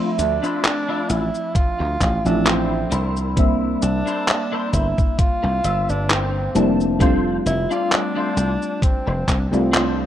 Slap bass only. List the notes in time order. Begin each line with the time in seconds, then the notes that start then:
0.19 D2
1.10 A1
1.55 muted slap bass stroke
1.80 D2
2.01 A1
2.26 A1
2.92 C2
3.83 C2
4.73 G1
5.44 C2
5.64 G1
5.89 G1
6.55 F1
7.46 F1
8.37 C2
8.82 muted slap bass stroke
9.07 F1
9.28 C2
9.53 C2